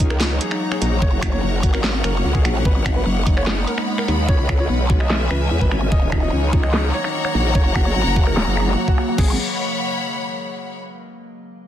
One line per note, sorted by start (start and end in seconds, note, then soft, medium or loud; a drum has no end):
0.00 0.39 C#2 loud
0.00 2.62 F#3 medium
0.00 4.25 A#3 medium
0.00 1.00 D#4 medium
0.00 4.94 C#5 medium
0.00 4.94 F#5 medium
0.10 0.19 A#4 medium
0.10 2.65 A#5 medium
0.10 finger snap medium
0.20 0.29 D#4 medium
0.20 snare loud
0.31 0.40 D#4 medium
0.41 0.50 G#4 medium
0.41 closed hi-hat medium
0.51 0.60 D#4 medium
0.51 finger snap soft
0.61 0.71 D#4 medium
0.72 0.81 G#4 medium
0.72 finger snap medium
0.82 1.00 A#1 medium
0.82 0.91 D#4 medium
0.82 closed hi-hat medium
0.92 1.01 D#4 medium
1.02 1.41 F#1 medium
1.02 2.64 C#4 medium
1.02 1.11 C#5 medium
1.02 kick loud
1.13 1.21 F#4 medium
1.22 1.32 F#4 medium
1.22 finger snap medium
1.22 kick medium
1.22 closed hi-hat medium
1.33 1.42 C#5 medium
1.43 1.62 F#1 medium
1.43 1.52 F#4 medium
1.53 1.62 F#4 medium
1.63 2.02 G#1 loud
1.63 1.73 F#4 medium
1.63 kick loud
1.63 closed hi-hat medium
1.74 1.83 A#4 medium
1.74 finger snap soft
1.84 1.93 F#4 medium
1.84 snare loud
1.94 2.03 F#4 medium
2.04 2.23 F#1 loud
2.04 2.13 A#4 medium
2.04 finger snap medium
2.04 closed hi-hat medium
2.14 2.23 F#4 medium
2.25 2.43 C#2 loud
2.25 2.34 F#4 medium
2.35 2.44 G#4 medium
2.35 kick medium
2.45 2.64 A#1 medium
2.45 2.54 F#4 medium
2.45 finger snap medium
2.45 closed hi-hat medium
2.55 2.64 F#4 medium
2.65 3.05 G#1 medium
2.65 5.89 G#3 medium
2.65 4.27 B3 medium
2.65 2.75 B4 medium
2.65 kick loud
2.76 2.84 D#4 medium
2.86 2.95 D#4 medium
2.86 finger snap medium
2.86 kick medium
2.86 closed hi-hat medium
2.96 3.05 B4 medium
3.06 3.66 F#1 loud
3.06 3.15 D#4 medium
3.17 3.25 D#4 medium
3.27 3.36 D#4 medium
3.27 kick loud
3.27 closed hi-hat medium
3.37 3.46 C#5 medium
3.37 4.94 B5 medium
3.37 finger snap soft
3.47 3.56 D#4 medium
3.47 snare loud
3.57 3.66 D#4 medium
3.67 3.77 A#4 medium
3.67 closed hi-hat medium
3.78 3.87 D#4 medium
3.78 finger snap soft
3.88 3.97 D#4 medium
3.98 4.07 A#4 medium
3.98 finger snap soft
4.08 4.27 D#2 medium
4.08 4.17 D#4 medium
4.08 closed hi-hat medium
4.19 4.28 D#4 medium
4.29 4.68 C#2 loud
4.29 5.90 E3 medium
4.29 5.90 C#4 medium
4.29 5.92 B4 medium
4.29 4.38 C#5 loud
4.29 kick loud
4.39 4.48 C#4 medium
4.49 4.58 C#4 medium
4.49 finger snap medium
4.49 kick medium
4.49 closed hi-hat medium
4.59 4.68 C#5 medium
4.69 5.29 B1 loud
4.69 4.78 C#4 medium
4.80 4.88 C#4 medium
4.90 4.99 C#4 medium
4.90 kick loud
4.90 closed hi-hat medium
4.99 5.09 D#5 medium
4.99 5.92 E5 medium
4.99 6.57 G#5 medium
4.99 finger snap medium
5.10 5.19 C#4 medium
5.10 snare loud
5.21 5.30 C#4 medium
5.31 5.49 C#2 medium
5.31 5.40 B4 medium
5.31 finger snap medium
5.31 closed hi-hat medium
5.41 5.50 C#4 medium
5.51 5.60 E2 loud
5.51 5.60 C#4 medium
5.61 5.90 G#1 medium
5.61 5.70 B4 medium
5.61 kick medium
5.71 5.80 C#4 medium
5.71 finger snap medium
5.71 closed hi-hat medium
5.82 5.91 C#4 medium
5.92 6.31 D#1 loud
5.92 7.53 D#3 medium
5.92 9.15 F#3 medium
5.92 7.54 A#3 medium
5.92 9.17 C#5 medium
5.92 6.01 D#5 loud
5.92 kick loud
6.02 6.11 D#4 medium
6.12 6.21 D#4 medium
6.12 9.18 F#5 loud
6.12 finger snap medium
6.12 kick medium
6.12 closed hi-hat medium
6.23 6.32 D#5 medium
6.33 6.92 C#2 medium
6.33 6.41 D#4 medium
6.43 6.51 D#4 medium
6.53 6.62 D#4 medium
6.53 kick loud
6.53 closed hi-hat medium
6.63 6.72 D#5 medium
6.63 9.18 A#5 loud
6.63 finger snap medium
6.73 6.82 D#4 medium
6.73 snare loud
6.84 6.93 D#4 medium
6.94 7.03 C#5 medium
6.94 closed hi-hat medium
7.04 7.13 D#4 medium
7.04 finger snap medium
7.14 7.24 D#4 medium
7.25 7.34 C#5 medium
7.25 finger snap medium
7.35 7.54 A#1 loud
7.35 7.43 D#4 medium
7.35 closed hi-hat medium
7.45 7.54 D#4 medium
7.55 7.94 F#1 loud
7.55 9.17 C#3 medium
7.55 9.17 A#3 medium
7.55 7.64 C#5 loud
7.55 kick loud
7.65 7.74 F#4 medium
7.75 7.85 F#4 medium
7.75 finger snap medium
7.75 kick medium
7.75 closed hi-hat medium
7.86 7.95 C#5 medium
7.96 8.05 G#1 loud
7.96 8.05 F#4 medium
8.06 8.45 F#1 loud
8.06 8.15 F#4 medium
8.16 8.26 F#4 medium
8.16 kick loud
8.16 closed hi-hat medium
8.27 8.36 A#4 medium
8.27 finger snap medium
8.37 8.45 F#4 medium
8.37 snare loud
8.47 8.76 F#1 loud
8.47 8.56 F#4 medium
8.57 8.66 G#4 medium
8.57 finger snap medium
8.57 closed hi-hat medium
8.67 8.76 F#4 medium
8.67 snare soft
8.77 8.86 F#4 medium
8.88 8.96 F#4 medium
8.88 kick medium
8.98 9.07 F#4 medium
8.98 finger snap medium
8.98 closed hi-hat medium
9.08 9.17 F#4 medium
9.18 9.37 G#1 loud
9.18 9.33 G#4 medium
9.18 10.78 C#5 medium
9.18 kick loud
9.18 crash medium
9.25 10.78 F#5 medium
9.31 10.78 B5 medium